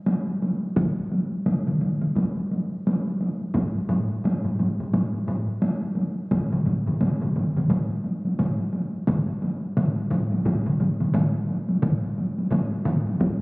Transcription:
0.06 taiko high
0.28 taiko high
0.42 taiko high
0.63 taiko high
0.76 taiko, taiko mid, taiko high
0.98 taiko high
1.12 taiko high
1.32 taiko high
1.46 taiko mid, taiko high
1.67 taiko mid, taiko high
1.81 taiko mid, taiko high
2.01 taiko mid, taiko high
2.15 taiko, taiko high
2.37 taiko high
2.51 taiko high
2.87 taiko high
3.08 taiko high
3.21 taiko high
3.42 taiko high
3.54 taiko, taiko low-mid, taiko high
3.76 taiko high
3.89 taiko low-mid, taiko high
4.12 taiko high
4.24 taiko low-mid, taiko high
4.44 taiko low-mid, taiko high
4.59 taiko low-mid, taiko high
4.80 taiko low-mid, taiko high
4.93 taiko low-mid, taiko high
5.14 taiko high
5.27 taiko low-mid, taiko high
5.62 taiko high
5.82 taiko high
5.95 taiko high
6.31 taiko, taiko low-mid, taiko mid, taiko high
6.52 taiko low-mid, taiko mid, taiko high
6.65 taiko low-mid, taiko mid, taiko high
6.86 taiko low-mid, taiko mid, taiko high
7.01 taiko low-mid, taiko mid, taiko high
7.22 taiko low-mid, taiko mid, taiko high
7.36 taiko low-mid, taiko mid, taiko high
7.56 taiko low-mid, taiko mid, taiko high
7.70 taiko, taiko low-mid, taiko mid, taiko high
7.90 taiko high
8.04 taiko high
8.25 taiko high
8.39 taiko low-mid, taiko mid, taiko high
8.59 taiko high
8.73 taiko high
8.94 taiko high
9.07 taiko, taiko low-mid, taiko mid, taiko high
9.42 taiko high
9.77 taiko low-mid, taiko mid, taiko high
10.10 taiko low-mid, taiko mid, taiko high
10.32 taiko high
10.45 taiko, taiko low-mid, taiko mid, taiko high
10.66 taiko low-mid, taiko mid
10.80 taiko low-mid, taiko mid, taiko high
11.00 taiko low-mid, taiko mid
11.14 taiko low-mid, taiko mid, taiko high
11.49 taiko high
11.69 taiko high
11.82 taiko, taiko low-mid, taiko mid, taiko high
12.18 taiko high
12.38 taiko high
12.51 taiko low-mid, taiko mid, taiko high
12.85 taiko low-mid, taiko mid, taiko high
13.07 taiko high
13.20 taiko, taiko low-mid, taiko mid, taiko high

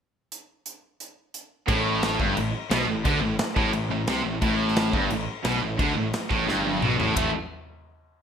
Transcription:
0.32 closed hi-hat
0.66 closed hi-hat
1.00 closed hi-hat
1.34 closed hi-hat
1.68 A1 A2, kick, crash
2.03 snare, crash
2.19 G1 G2, kick
2.37 A1 A2, crash
2.70 B1 B2, snare, crash
2.88 A1 A2
3.05 D2 D3, kick, crash
3.21 A1 A2
3.39 snare, crash
3.56 A1 A2, kick
3.73 A1 A2, crash
3.90 A1 A2
4.07 C2 C3, snare, crash
4.24 A1 A2
4.41 A1 A2, kick, crash
4.68 snare
4.76 snare, crash
4.93 G1 G2, kick
5.10 A1 A2, crash
5.44 B1 B2, snare, crash
5.62 A1 A2
5.79 D2 D3, kick, crash
5.96 A1 A2
6.13 snare, crash
6.31 A1 A2, kick
6.46 G1 G2, snare
6.65 high tom
6.82 B1 B2, mid tom
6.98 A1 A2, floor tom
7.16 A1 A2 E3 A3, kick, floor tom, ride bell

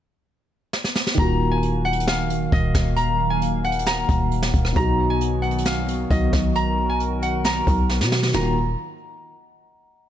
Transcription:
0.73 snare
0.84 snare
0.96 snare
1.07 snare
1.14 D#1 D#3 F#3 A#3 F5, kick, closed hi-hat
1.19 F4 F#4 A#5
1.51 G#5
1.63 closed hi-hat
1.85 F#5, closed hi-hat
1.93 closed hi-hat
2.00 closed hi-hat
2.07 F5, snare, closed hi-hat
2.30 closed hi-hat
2.52 D#1 D#5, kick, closed hi-hat
2.75 D#1, kick, snare, closed hi-hat
2.96 A#5, closed hi-hat
3.30 G#5
3.42 closed hi-hat
3.64 F#5, closed hi-hat
3.72 closed hi-hat
3.79 closed hi-hat
3.86 A#5, snare, closed hi-hat
4.09 D#1, kick, closed hi-hat
4.31 closed hi-hat
4.43 snare
4.54 D#1, kick, closed hi-hat
4.65 cross-stick
4.73 B1 B2 D#3 B3 F#4 A#5, kick, closed hi-hat
4.77 D#4 F#4
5.10 G#5
5.21 closed hi-hat
5.42 F#5, closed hi-hat
5.51 closed hi-hat
5.58 closed hi-hat
5.66 F5, snare
5.88 closed hi-hat
6.11 B1 D#5, kick, closed hi-hat
6.33 B1, kick, snare, closed hi-hat
6.55 A#4 A#5, closed hi-hat
6.89 G#5
7.00 closed hi-hat
7.22 F#5, closed hi-hat
7.44 A#5, snare, closed hi-hat
7.67 B1, kick, closed hi-hat
7.90 snare
8.01 B2, snare
8.12 snare
8.23 snare
8.34 D#1 D#3 F#3 A#3 F4 F#4 A#5, snare, floor tom, ride bell

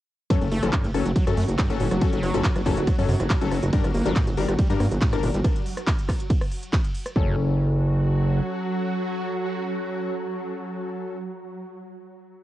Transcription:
0.30 F#2 F#3 C#4 F#4 A4, kick, cross-stick, closed hi-hat, ride
0.41 F#1 F#2, closed hi-hat
0.52 F#1 A3, open hi-hat
0.63 F#1 E3 F#3 C#4 A4, cross-stick, closed hi-hat
0.73 G2, kick, clap, closed hi-hat, ride
0.84 F#1 F#2, closed hi-hat
0.94 F#1 F#3 C#4 A4, cross-stick, open hi-hat
1.06 F#1 F#3, closed hi-hat
1.16 F#3, kick, closed hi-hat, ride
1.27 F#2 F#3 C#4 A4, cross-stick, closed hi-hat
1.37 F#2 A3, open hi-hat
1.48 F#1, closed hi-hat
1.59 G2, kick, cross-stick, clap, closed hi-hat, ride
1.70 F#1 F#2 F#3 C#4 A4, closed hi-hat
1.80 F#1 A2, open hi-hat
1.91 F#1 F#3, cross-stick, closed hi-hat
2.01 F#3 C#4 A4, kick, closed hi-hat, ride
2.13 F#1 F#3, closed hi-hat
2.23 F#1, cross-stick, open hi-hat
2.34 F#1 E2 F#3 C#4 A4, closed hi-hat
2.44 G2, kick, clap, closed hi-hat, ride
2.56 F#1 F#3, cross-stick, closed hi-hat
2.66 F#1 F#2 F#3 C#4 A4, kick, clap, open hi-hat
2.77 F#1, closed hi-hat
2.87 F#3, kick, cross-stick, closed hi-hat, ride
2.98 F#2 F#3 C#4 A4, open hi-hat
3.09 F#2 C3, open hi-hat
3.20 F#1 F#2, cross-stick, closed hi-hat
3.30 G2, kick, clap, closed hi-hat, ride
3.41 F#1 F#3 C#4 A4, closed hi-hat
3.51 F#1, cross-stick, open hi-hat
3.63 F#1, closed hi-hat
3.73 G2 G3 D4 A#4, kick, closed hi-hat, ride
3.84 G1 G2, cross-stick, closed hi-hat
3.94 G1 A#3, open hi-hat
4.06 G1 F3 G3 D4 A#4, closed hi-hat
4.16 A2, kick, cross-stick, clap, closed hi-hat, ride
4.27 G1 G2, closed hi-hat
4.37 G1 G3 D4 A#4, open hi-hat
4.48 G1 G3, cross-stick, closed hi-hat
4.59 G3, kick, closed hi-hat, ride
4.70 G2 G3 D4 A#4, closed hi-hat
4.80 G2 A#3, cross-stick, open hi-hat
4.91 G1, closed hi-hat
5.01 A2, kick, clap, closed hi-hat, ride
5.13 G1 G2 G3 D4 A#4, cross-stick, closed hi-hat
5.23 G1 A#2, open hi-hat
5.34 G1 G3, closed hi-hat
5.44 kick, cross-stick, closed hi-hat, ride
5.56 closed hi-hat
5.66 open hi-hat
5.77 cross-stick, closed hi-hat
5.87 kick, clap, closed hi-hat, ride
5.99 closed hi-hat
6.09 kick, cross-stick, clap, open hi-hat
6.20 closed hi-hat
6.30 kick, closed hi-hat, ride
6.41 cross-stick, open hi-hat
6.52 open hi-hat
6.63 closed hi-hat
6.73 kick, cross-stick, clap, closed hi-hat, ride
6.84 closed hi-hat
6.95 open hi-hat
7.06 cross-stick, closed hi-hat
7.16 F#1 F#2 F#3 C#4 F#4 A4, kick

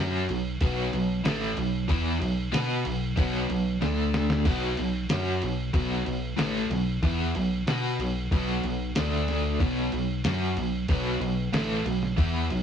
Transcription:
Already playing: F#2 F#3 C#4
0.00 F#4
0.29 B1 B2 F#3, crash
0.61 B1 B2 F#3 B3, kick, crash
0.93 B1 B2 F#3, crash
1.24 A1 A2 E3 A3, snare, crash
1.57 B1 B2 F#3, crash
1.88 E2 E3 B3 E4, kick, crash
2.19 B1 B2 F#3, crash
2.52 B2 B3 F#4 B4, snare, crash
2.84 B1 B2 F#3, crash
3.16 B1 B2 F#3 B3, kick, crash
3.48 B1 B2 F#3, crash
3.81 D2 D3 A3 D4, snare
4.14 snare
4.30 snare
4.45 B1 B2 F#3 B3, kick, crash
4.77 B1 B2 F#3, crash
5.09 F#2 F#3 C#4 F#4, snare, crash
5.42 B1 B2 F#3, crash
5.74 B1 B2 F#3 B3, kick, crash
6.06 B1 B2 F#3, crash
6.37 A1 A2 E3 A3, snare, crash
6.70 B1 B2 F#3, snare, crash
7.02 E2 E3 B3 E4, kick, crash
7.35 B1 B2 F#3, crash
7.67 B2 B3 F#4 B4, snare, crash
7.99 B1 B2 F#3, crash
8.31 B1 B2 F#3 B3, kick, crash
8.63 B1 B2 F#3, crash
8.95 D2 D3 A3 D4, snare, crash
9.28 snare, crash
9.60 B1 B2 F#3 B3, kick, crash
9.92 B1 B2 F#3, crash
10.24 F#2 F#3 C#4 F#4, snare, crash
10.56 B1 B2 F#3, crash
10.88 B1 B2 F#3 B3, kick, crash
11.20 B1 B2 F#3, crash
11.52 A1 A2 E3 A3, snare, crash
11.85 B1 B2 F#3, crash
12.03 snare
12.17 E2 E3 B3 E4, kick, crash
12.50 B1 B2 F#3, crash

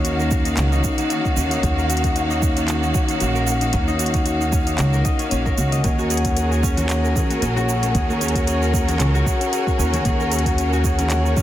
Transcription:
Already playing: D#2 D#3 A#3 C#4 D#4 F#4 A#4 F5
0.04 F#4, closed hi-hat, shaker
0.19 A#4, shaker
0.31 F#4, kick, shaker
0.45 D#4, closed hi-hat, shaker
0.57 C#2 C#4, clap, closed hi-hat, shaker
0.72 D#4, shaker
0.84 F#4, kick, shaker
0.98 C#4, closed hi-hat, shaker
1.10 F#4, closed hi-hat, shaker
1.25 D#4, kick, shaker
1.36 D#2 C#4, shaker
1.51 D#4, closed hi-hat, shaker
1.63 D#2 F#4, kick, closed hi-hat, shaker
1.77 A#4, shaker
1.89 F#4, closed hi-hat, shaker
1.97 closed hi-hat
2.04 D#4, kick, closed hi-hat, shaker
2.16 C#4, closed hi-hat, shaker
2.30 D#4, shaker
2.42 F#4, kick, shaker
2.56 C#4, closed hi-hat, shaker
2.68 F#4, clap, closed hi-hat, shaker
2.82 D#4, shaker
2.94 C#4, kick, shaker
3.08 D#4, closed hi-hat, shaker
3.20 A#1 F#4, closed hi-hat, shaker
3.35 A#4, shaker
3.47 F#4, shaker
3.61 D#4, closed hi-hat, shaker
3.73 D#2 C#4, kick, closed hi-hat, shaker
3.88 D#4, shaker
3.99 F#4, closed hi-hat, shaker
4.06 closed hi-hat
4.14 C#4, kick, closed hi-hat, shaker
4.25 F#4, closed hi-hat, shaker
4.41 D#4, shaker
4.52 C#4, kick, shaker
4.67 D#4, closed hi-hat, shaker
4.78 C#2 F#4, clap, closed hi-hat, shaker
4.93 A#4, shaker
5.05 D#5, kick, closed hi-hat, shaker
5.19 C#4, closed hi-hat, shaker
5.31 A#1 C#4, closed hi-hat, shaker
5.45 A#4, kick, shaker
5.58 C#2 F#4, closed hi-hat, shaker
5.72 D#5, closed hi-hat, shaker
5.84 D#2 C#4 F#4 G#4 A#4, kick, closed hi-hat, shaker
5.99 F#4, shaker
6.10 G#4, closed hi-hat, shaker
6.17 closed hi-hat
6.25 C#4, kick, closed hi-hat, shaker
6.36 G#4, closed hi-hat, shaker
6.51 F#4, shaker
6.63 C#4, kick, shaker
6.77 F#4, closed hi-hat, high bongo, low conga, shaker
6.89 G#4, clap, closed hi-hat, shaker
7.03 A#4, shaker
7.15 G#4, kick, high bongo, low conga, shaker
7.30 F#4, closed hi-hat, high conga, shaker
7.42 A#1 C#4, closed hi-hat, shaker
7.56 F#4, high bongo, high conga, shaker
7.68 G#4, shaker
7.82 C#4, closed hi-hat, high conga, shaker
7.94 D#2 G#4, kick, closed hi-hat, shaker
8.09 F#4, high conga, shaker
8.20 C#4, closed hi-hat, shaker
8.28 closed hi-hat
8.35 F#4, kick, closed hi-hat, shaker
8.46 G#4, closed hi-hat, shaker
8.61 A#4, shaker
8.73 G#4, kick, high conga, shaker
8.88 F#4, closed hi-hat, high bongo, low conga, shaker
8.99 C#2 C#4, clap, closed hi-hat, shaker
9.14 F#4, shaker
9.26 G#4, kick, shaker
9.40 C#4, closed hi-hat, shaker
9.52 G#4, closed hi-hat, shaker
9.67 F#4, kick, shaker
9.79 D#2 C#4, high bongo, shaker
9.93 F#4, closed hi-hat, high conga, low conga, shaker
10.05 D#2 G#4, kick, closed hi-hat, shaker
10.20 A#4, shaker
10.32 G#4, closed hi-hat, shaker
10.39 closed hi-hat
10.46 F#4, kick, closed hi-hat, shaker
10.58 C#4, closed hi-hat, shaker
10.73 F#4, shaker
10.84 G#4, kick, shaker
10.99 C#4, closed hi-hat, high bongo, low conga, shaker
11.10 G#4, clap, closed hi-hat, shaker
11.25 F#4, shaker
11.37 C#4, kick, high bongo, low conga, shaker

